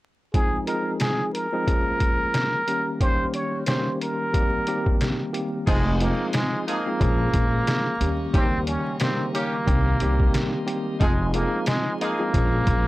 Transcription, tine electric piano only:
0.34 F3 G#3 C4 D#4 G#4
0.67 F3 G#3 C4 D#4 G#4
1.52 F3 G#3 C4 D#4 G#4
1.66 F3 G#3 A#3 C#4 G#4
2.67 D#3 G3 A#3 C#4 G4
3.00 D#3 G3 A#3 C#4 G4
3.67 D#3 G3 A#3 C#4 G4
4.33 D#3 G3 A#3 C4 G4
4.67 D#3 G3 A#3 C4 G4
5.32 D#3 G3 A#3 C4 G4
5.67 F3 G#3 C4 D#4 G#4
6.00 F3 G#3 C4 D#4 G#4
6.86 F3 G#3 C4 D#4 G#4
7.00 F3 G#3 A#3 C#4 G#4
8.00 D#3 G3 A#3 C#4 G4
8.34 C#3 D#3 G3 A#3 G4
9.00 C#3 D#3 G3 A#3 G4
9.66 D#3 G3 A#3 C4 G4
10.01 D#3 G3 A#3 C4 G4
10.66 D#3 G3 A#3 C4 G4
11.00 F3 G#3 C4 D#4 G#4
11.34 F3 G#3 C4 D#4 G#4
12.19 F3 G#3 C4 D#4 G#4
12.33 F3 G#3 A#3 C#4 G#4

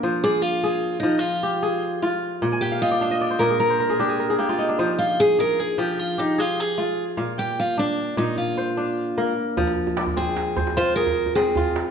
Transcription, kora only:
Already playing: A#3 D4 A#4
0.03 F3 C5
0.24 D5
0.64 G#4
1.03 F3
1.43 G4
1.63 G#4
2.03 F4
2.42 A#2
2.52 G#5
2.62 G5
2.72 F5
2.82 D#5
2.91 D5
3.01 D4 F5
3.11 D#5
3.21 D5
3.31 C5
3.40 A#2 A#4
3.50 G#4
3.60 A#4
3.70 C5
3.80 A#4
3.90 G#4
4.00 D4 G4
4.09 G#4
4.20 A#4
4.30 G#4
4.39 A#3 G4
4.49 F4
4.58 D#4
4.69 D4
4.79 F3 C5
5.39 G#4
5.78 F3
6.18 G4
6.38 G#4
6.78 F4
7.17 A#2 F5
7.38 G5
7.78 D4
8.17 A#2
8.58 C5
8.77 D4
9.18 A#3 A#4
9.57 F3
9.97 D5
10.17 C4
10.57 C5
10.77 F4
10.97 G#4
11.37 C4
11.57 F4

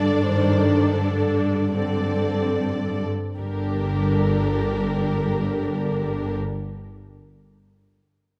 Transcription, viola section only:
Already playing: D3 D4
0.27 D#3
0.98 D3
1.75 D3 C4
3.38 D3 D4

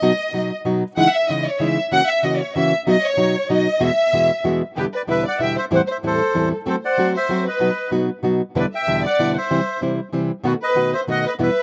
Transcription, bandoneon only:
4.78 G4 B4
4.96 B4 D5
5.11 B4 E5
5.28 D5 F#5
5.42 E5 G5
5.58 C5 E5
5.75 C5 F#5
5.91 C5 E5
6.07 A4 C5
6.69 A4 C5
6.85 D5 F#5
7.17 C5 E5
7.48 B4 D#5
8.60 B4 D5
8.75 E5 G5
9.05 D5 F#5
9.37 C5 E5
10.46 F#4 B4
10.62 B4 D#5
10.94 C5 E5
11.11 D#5 F#5
11.27 B4 D#5
11.43 B4 E5

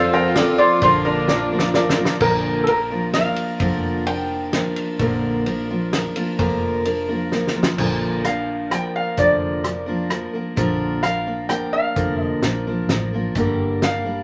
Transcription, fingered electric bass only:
Already playing: F2
0.82 A#1
2.21 A#1
3.60 F1
5.00 A#1
6.39 F1
7.78 A#1
9.18 F1
10.57 A#1
11.96 F1
12.42 A#1
12.88 A1
13.35 G1

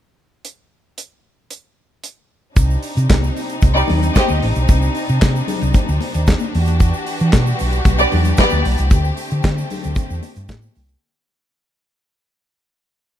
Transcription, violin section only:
3.75 G3 D#4 D5
4.16 C4 G4 D#5
7.99 B3 G4 D5
8.39 B3 G4 D5

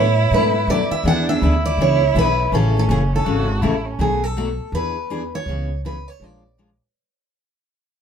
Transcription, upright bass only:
Already playing: A2
0.31 G#2
0.67 F#2
0.91 muted upright bass stroke
1.04 E2
1.42 D2
1.78 C#2
2.15 B1
2.52 A1
2.89 F#1
3.26 G#1
3.62 A1
3.99 B1
4.72 E2
5.46 C#2
6.20 A#1

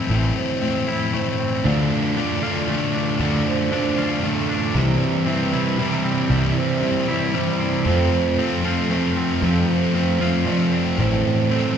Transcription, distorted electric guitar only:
0.09 A2 E3 A3 C4 E4
0.61 A2 E3 A3 C4 E4
0.87 A2 E3 A3 C4 E4
1.13 A2 E3 A3 C4 E4
1.64 D3 A3 D4 F4
2.16 D3 A3 D4 F4
2.42 D3 A3 D4 F4
2.68 D3 A3 D4 F4
3.19 D3 A3 D4 F4
3.71 D3 A3 D4 F4
3.97 D3 A3 D4 F4
4.22 D3 A3 D4 F4
4.74 C3 E3 G3 C4 E4
5.26 C3 E3 G3 C4 E4
5.52 C3 E3 G3 C4 E4
5.78 C3 E3 G3 C4 E4
6.29 C3 E3 G3 C4 E4
6.81 C3 E3 G3 C4 E4
7.07 C3 E3 G3 C4 E4
7.33 C3 E3 G3 C4 E4
7.85 F3 A3 C4 F4
8.38 F3 A3 C4 F4
8.63 F3 A3 C4 F4
8.89 F3 A3 C4 F4
9.41 F3 A3 C4 F4
9.94 F3 A3 C4 F4
10.20 F3 A3 C4 F4
10.46 F3 A3 C4 F4
10.98 A2 E3 A3 C4 E4
11.50 A2 E3 A3 C4 E4

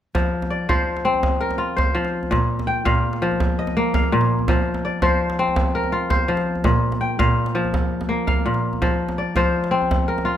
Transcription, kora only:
0.15 F3
0.50 D5
0.69 F3 C5
1.05 C4
1.41 A#4
1.58 F4
1.77 C5
1.95 F3
2.31 A#2
2.67 G5
2.85 A#2 F5
3.22 F3
3.59 D#5
3.77 A#3
3.95 F5
4.12 A#2
4.49 F3
4.85 D5
5.02 F3 C5
5.39 C4
5.75 A#4
5.92 F4
6.10 C5
6.28 F3
6.64 A#2
7.01 G5
7.19 A#2 F5
7.55 F3
8.09 A#3
8.27 F5
8.46 A#2
8.82 F3
9.18 D5
9.36 F3 C5
9.71 C4
10.08 A#4
10.25 F4

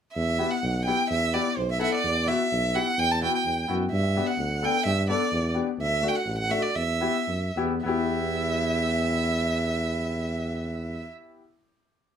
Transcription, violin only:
0.14 E5
0.51 F#5
0.85 G5
1.10 E5
1.34 D5
1.57 C5
1.71 E5
1.80 E5 F#5
1.95 D5
2.28 E5
2.75 F#5
2.99 G5
3.11 A5
3.23 G5
3.35 G5
3.91 E5
4.27 F#5
4.65 G5
4.86 E5
5.10 D5
5.82 E5
6.08 G5
6.15 F#5
6.38 F#5
6.51 E5
6.62 D5
6.75 E5
7.85 E5

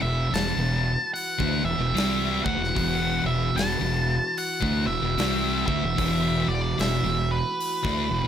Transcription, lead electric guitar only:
0.02 E5
0.34 A5
1.14 F#5
1.65 E5
2.44 F#5
3.26 E5
3.56 A5
4.38 F#5
4.87 E5
5.67 E5
6.48 D5
6.80 E5
7.31 B4

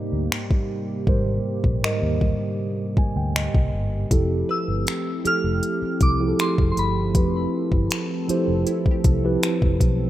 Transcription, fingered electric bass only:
0.12 D2
1.07 G#1
1.64 A#1
1.83 muted fingered electric bass stroke
2.02 D#2
2.97 muted fingered electric bass stroke
3.16 D2
3.54 C2
3.73 G1
4.11 F1
4.68 G1
5.25 muted fingered electric bass stroke
5.44 F1
5.82 muted fingered electric bass stroke
6.01 C2
6.58 F1
6.77 G1
7.15 F1
7.72 G1
8.29 muted fingered electric bass stroke
8.48 F1
8.86 muted fingered electric bass stroke
9.04 C2
9.62 F1
9.80 B1

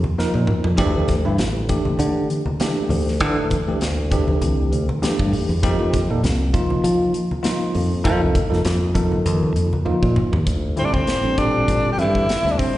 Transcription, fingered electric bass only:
0.18 muted fingered electric bass stroke
0.35 A#2
0.65 F2
0.78 D2
0.95 D2
1.25 G2
1.39 A1
1.99 D3
2.90 D2
3.21 D3
3.37 A1
3.67 D2
3.81 D2
4.42 C2
4.72 D2
5.02 muted fingered electric bass stroke
5.20 G2
5.49 E2
5.63 F2
5.79 F2
6.10 A#2
6.23 C2
6.84 F3
7.75 F2
8.05 F3
8.21 C2
8.52 F2
8.65 F2
9.26 D#2
9.56 F2
9.87 muted fingered electric bass stroke
10.02 A#2
10.32 D#2
10.47 D2
10.94 D2
11.07 muted fingered electric bass stroke
11.23 A1
11.68 A1
11.84 muted fingered electric bass stroke
11.98 G2
12.45 D2

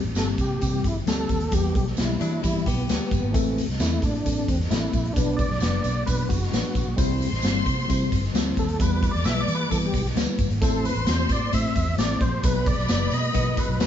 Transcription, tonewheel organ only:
0.18 A4
0.41 G4
0.87 E4
1.08 A4
1.54 G4
1.76 G4
2.00 E4
2.45 E4
2.67 B3
3.81 E4
4.03 D4
4.48 C4
4.71 E4
5.14 D4
5.37 D5
5.61 D5
6.06 B4
6.29 F#4
8.59 A4
8.82 B4
9.11 D5
9.25 E5
9.41 D5
9.55 B4
9.71 A4
9.86 G4
10.61 A4
10.86 B4
11.10 C5
11.32 D5
11.54 E5
11.99 D5
12.21 C5
12.45 B4
12.67 D5
13.13 D#5
13.59 B4
13.82 B4

